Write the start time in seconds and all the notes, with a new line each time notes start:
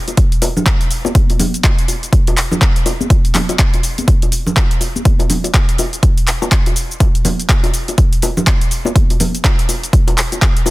0.08 closed hi-hat, high bongo, shaker
0.17 kick, closed hi-hat, shaker
0.32 closed hi-hat, shaker
0.42 open hi-hat, high bongo, shaker
0.57 low conga, shaker
0.66 kick, clap, closed hi-hat, high bongo, shaker
0.81 closed hi-hat, shaker
0.91 open hi-hat, shaker
1.05 high bongo, high conga, shaker
1.15 kick, closed hi-hat, shaker
1.30 closed hi-hat, high bongo, shaker
1.39 open hi-hat, high conga, low conga, shaker
1.54 closed hi-hat, shaker
1.64 kick, clap, closed hi-hat, high bongo, shaker
1.79 closed hi-hat, shaker
1.88 open hi-hat, high bongo, shaker
2.03 closed hi-hat, shaker
2.13 kick, closed hi-hat, shaker
2.27 closed hi-hat, high bongo, shaker
2.37 clap, open hi-hat, shaker
2.51 high bongo, low conga, shaker
2.61 kick, clap, closed hi-hat, shaker
2.76 closed hi-hat, shaker
2.86 open hi-hat, high bongo, shaker
3.01 high conga, shaker
3.10 kick, closed hi-hat, high bongo, shaker
3.25 closed hi-hat, shaker
3.34 clap, open hi-hat, high conga, low conga, shaker
3.49 closed hi-hat, high bongo, shaker
3.59 kick, clap, closed hi-hat, shaker
3.74 closed hi-hat, high bongo, shaker
3.83 open hi-hat, shaker
3.98 closed hi-hat, high conga, shaker
4.08 kick, closed hi-hat, shaker
4.22 closed hi-hat, high bongo, shaker
4.32 open hi-hat, shaker
4.47 low conga, shaker
4.56 kick, clap, closed hi-hat, high bongo, shaker
4.71 closed hi-hat, shaker
4.81 open hi-hat, high bongo, shaker
4.96 high conga, shaker
5.05 kick, closed hi-hat, high conga, shaker
5.19 closed hi-hat, high bongo, shaker
5.30 open hi-hat, high conga, low conga, shaker
5.44 closed hi-hat, high bongo, shaker
5.54 kick, clap, closed hi-hat, shaker
5.69 closed hi-hat, shaker
5.78 open hi-hat, high bongo, shaker
5.93 closed hi-hat, shaker
6.03 kick, closed hi-hat, high bongo, shaker
6.18 closed hi-hat, shaker
6.27 clap, open hi-hat, shaker
6.42 high bongo, shaker
6.52 kick, clap, closed hi-hat, shaker
6.66 closed hi-hat, high bongo, shaker
6.76 open hi-hat, shaker
6.91 shaker
7.00 kick, closed hi-hat, high bongo, shaker
7.15 closed hi-hat, shaker
7.25 open hi-hat, high bongo, high conga, low conga, shaker
7.40 closed hi-hat, shaker
7.49 kick, clap, closed hi-hat, shaker
7.63 closed hi-hat, high bongo, shaker
7.74 open hi-hat, shaker
7.88 closed hi-hat, high bongo, shaker
7.98 kick, closed hi-hat, shaker
8.13 closed hi-hat, shaker
8.22 open hi-hat, high bongo, shaker
8.37 low conga, shaker
8.47 kick, clap, closed hi-hat, high bongo, shaker
8.61 closed hi-hat, shaker
8.71 open hi-hat, shaker
8.85 high bongo, high conga, shaker
8.96 kick, closed hi-hat, high conga, shaker
9.10 closed hi-hat, high bongo, shaker
9.20 open hi-hat, high conga, low conga, shaker
9.35 closed hi-hat, shaker
9.44 kick, clap, closed hi-hat, high bongo, shaker
9.59 closed hi-hat, shaker
9.69 open hi-hat, high bongo, shaker
9.83 closed hi-hat, shaker
9.93 kick, closed hi-hat, shaker
10.07 closed hi-hat, high bongo, shaker
10.18 clap, open hi-hat, shaker
10.32 closed hi-hat, high bongo, shaker
10.42 kick, clap, closed hi-hat, shaker
10.57 closed hi-hat, shaker
10.66 open hi-hat, high bongo, shaker